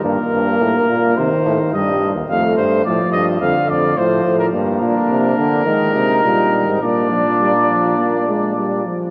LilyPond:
<<
  \new Staff \with { instrumentName = "Cornet" } { \time 4/4 \key bes \mixolydian \tempo 4 = 106 bes'2 c''4 ees''8. r16 | f''8 c''8 d''8 ees''8 f''8 d''8 c''8. bes'16 | bes'1 | d''2.~ d''8 r8 | }
  \new Staff \with { instrumentName = "Trumpet" } { \time 4/4 \key bes \mixolydian r1 | r1 | d'2 ees'2 | d'2.~ d'8 r8 | }
  \new Staff \with { instrumentName = "Trombone" } { \clef bass \time 4/4 \key bes \mixolydian bes2 ees4 g8 r8 | a4 f4 d4 f4 | bes2 aes4 g4 | bes8 f8 g8 f8 bes8 aes8 g8 f8 | }
  \new Staff \with { instrumentName = "Bass trombone" } { \clef bass \time 4/4 \key bes \mixolydian g,8 g,8 a,8 bes,8 c8 a,8 g,8. ees,16 | f,8 g,8 a,8 g,8 f,8 f,8 a,8 a,8 | g,8 bes,8 c8 d8 ees8 c8 bes,8. aes,16 | bes,2.~ bes,8 r8 | }
>>